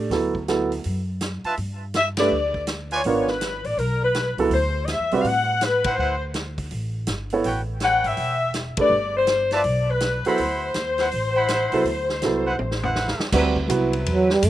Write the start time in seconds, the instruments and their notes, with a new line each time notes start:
0.10 upright bass D2, grand piano F#3 B3 E4 A4, snare, open hi-hat
0.35 kick
0.48 grand piano F#3 B3 E4 A4, snare, closed hi-hat
0.72 open hi-hat
0.84 upright bass F#2, open hi-hat
1.21 snare, closed hi-hat
1.44 trumpet section F4 B4 E5 A5, muted upright bass stroke, open hi-hat
1.57 upright bass G2, open hi-hat
1.94 saxophone section E5, snare, closed hi-hat
2.17 grand piano A3 D4 G4 B4, saxophone section D5, snare, ride
2.31 upright bass D2
2.54 kick
2.67 snare, closed hi-hat
2.91 trumpet section F4 B4 D5 G#5, saxophone section C#5, open hi-hat
3.04 upright bass G#1, grand piano B3 D4 F4 A#4, open hi-hat
3.28 saxophone section B4, snare
3.41 snare, closed hi-hat
3.64 upright bass A1, saxophone section D5, open hi-hat
3.77 upright bass B1, saxophone section A#4, open hi-hat
4.04 saxophone section B4
4.14 snare, closed hi-hat
4.38 upright bass C#2, grand piano F#3 B3 E4 A4, open hi-hat
4.50 upright bass D2, open hi-hat
4.54 saxophone section C5
4.86 saxophone section D#5, snare, closed hi-hat
4.91 saxophone section E5
5.00 upright bass E2
5.11 upright bass C2, grand piano G3 C4 F#4 B4, open hi-hat
5.22 upright bass A2, saxophone section F5, open hi-hat
5.28 saxophone section F#5
5.61 saxophone section B4, snare, closed hi-hat
5.84 trumpet section E4 B4 C5 F#5, kick, ride
5.89 saxophone section C5
5.98 upright bass D2, trumpet section E4 B4 C5 F#5
6.34 snare, closed hi-hat
6.58 kick, open hi-hat
6.71 upright bass A1, open hi-hat
7.07 upright bass G1, snare, closed hi-hat
7.30 grand piano B3 E4 A4 C#5, open hi-hat
7.44 upright bass A1, trumpet section F#4 B4 C#5 G5, open hi-hat
7.80 trumpet section B4 C#5 F#5 G5, snare, closed hi-hat
7.84 saxophone section F#5
8.04 upright bass G#1, saxophone section E5, open hi-hat
8.17 upright bass E1, open hi-hat
8.54 snare, closed hi-hat
8.77 grand piano A3 D4 G4 B4, muted upright bass stroke, kick, ride
8.81 saxophone section D5
8.90 upright bass G1
9.17 saxophone section C5
9.27 snare, closed hi-hat
9.51 trumpet section F4 B4 E5 A5, saxophone section D5, snare, open hi-hat
9.64 upright bass B1, open hi-hat
9.90 saxophone section B4
10.00 snare, closed hi-hat
10.25 grand piano F#3 B3 E4 A4, trumpet section E4 C5 F#5 B5, saxophone section C5, muted upright bass stroke, open hi-hat
10.38 upright bass D2, open hi-hat
10.74 upright bass D#2, snare, closed hi-hat
10.98 trumpet section E4 B4 C5 F#5, snare, open hi-hat
11.12 upright bass A1, open hi-hat
11.35 trumpet section E4 C5 F#5 B5
11.48 snare, closed hi-hat
11.72 upright bass C2, grand piano F#3 B3 E4 A4, open hi-hat
11.84 upright bass D2, open hi-hat
12.09 snare
12.22 upright bass C2, grand piano F#3 B3 E4 A4, snare, closed hi-hat
12.46 trumpet section E4 B4 C5 F#5
12.59 upright bass A1, high tom
12.71 snare
12.83 trumpet section E4 B4 C5 F#5, floor tom
12.96 snare
13.08 snare
13.18 muted upright bass stroke, snare
13.32 upright bass D2, saxophone section F#3 C4 E4 B4, grand piano G3 C4 F#4 B4, kick, snare, crash
13.56 kick
13.68 upright bass C2, grand piano F#3 B3 E4 B4, hi-hat pedal, ride
13.93 ride
14.06 upright bass E2, ride
14.10 trombone F#3
14.30 trombone G3, snare
14.43 upright bass F#2, trombone A3, hi-hat pedal, ride